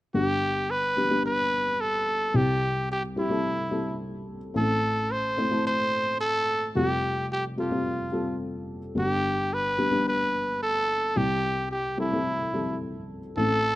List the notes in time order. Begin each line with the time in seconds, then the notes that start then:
0.14 G1 G2 G3 B3 D4 G4
0.71 B4
0.97 G3 B3 D4 G4
1.10 G3 B3 D4 G4
1.26 B4
1.81 A4
2.34 C2 C3 G3 C4 E4 G4
2.92 G4
3.16 G3 C4 E4 G4
3.30 G3 C4 E4 A4
3.71 G3 C4 E4 A4
4.54 A1 A2 A3 C4 E4 A4
5.11 C5
5.37 A3 C4 E4 C5
5.51 A3 C4 E4 A4
5.67 C5
6.21 A4
6.75 F1 F2 G3 C4 F4 G4
7.33 G4
7.57 G3 C4 F4 A4
7.71 G3 C4 F4 G4
8.12 G3 C4 F4 A4
8.95 G1 G2 G3 B3 D4 G4
9.54 B4
9.78 G3 B3 D4 G4
9.91 G3 B3 D4 G4
10.08 B4
10.63 A4
11.16 C2 C3 G3 C4 E4 G4
11.71 G4
11.97 G3 C4 E4 A4
12.12 G3 C4 E4 A4
12.54 G3 C4 E4 A4
13.37 A1 A2 A3 C4 E4 A4